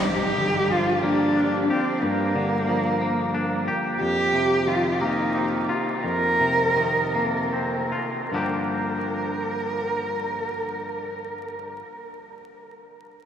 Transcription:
<<
  \new Staff \with { instrumentName = "Cello" } { \time 6/8 \key g \minor \tempo 4. = 57 g'4 f'8 d'4 c'8 | bes2~ bes8 r8 | g'4 f'8 ees'4 r8 | bes'2 r4 |
bes'2.~ | bes'2. | }
  \new Staff \with { instrumentName = "Clean electric guitar" } { \clef bass \time 6/8 \key g \minor g,8 d8 f8 bes8 d'8 g'8 | g,8 d8 f8 bes8 d'8 g'8 | f,8 c8 ees8 bes8 c'8 f'8 | f,8 c8 ees8 bes8 c'8 f'8 |
<g, d f bes d' g'>2.~ | <g, d f bes d' g'>2. | }
>>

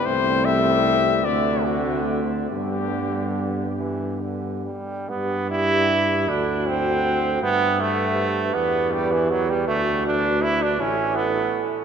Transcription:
<<
  \new Staff \with { instrumentName = "Cornet" } { \time 6/8 \key g \major \tempo 4. = 52 c''8 e''4 d''8 fis'8 r8 | g'4. r4. | d''4. fis''4. | e''4. d''4. |
d''4. e''4 r8 | }
  \new Staff \with { instrumentName = "French horn section" } { \time 6/8 \key g \major c'4. c'4. | b2~ b8 r8 | g'4. a'4. | b'2.~ |
b'4. a'4. | }
  \new Staff \with { instrumentName = "Euphonium" } { \time 6/8 \key g \major a4. a4. | g2~ g8 r8 | g'4. fis'4. | g'4. g'4. |
fis'4. e'4 r8 | }
  \new Staff \with { instrumentName = "Trombone" } { \time 6/8 \key g \major g4. d4. | d4. e8 d8 g8 | b8 e'4 d'8 c'4 | b8 a4 b8 g16 e16 fis16 g16 |
a8 d'8 e'16 d'16 cis'8 b8. r16 | }
  \new Staff \with { instrumentName = "Tuba" } { \clef bass \time 6/8 \key g \major c,4. d,4. | g,2~ g,8 r8 | g,4. d,4. | g,4. e,4. |
d,4. a,,4 r8 | }
>>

